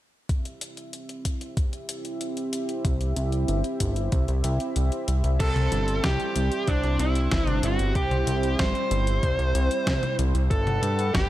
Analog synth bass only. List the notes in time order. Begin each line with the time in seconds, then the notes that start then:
2.85 C2
3.16 C2
3.48 G1
3.80 G1
4.12 C2
4.28 C2
4.44 C2
4.76 C2
5.08 C2
5.24 C2
5.40 C2
5.72 G1
6.04 C2
6.36 C2
6.68 C2
6.83 C2
6.99 C2
7.32 G1
7.63 G1
7.79 G1
7.95 C2
8.27 C2
8.59 G1
8.91 G1
9.23 C2
9.39 C2
9.55 C2
9.87 C2
10.19 C2
10.34 C2
10.51 G1
10.82 G2
11.15 G1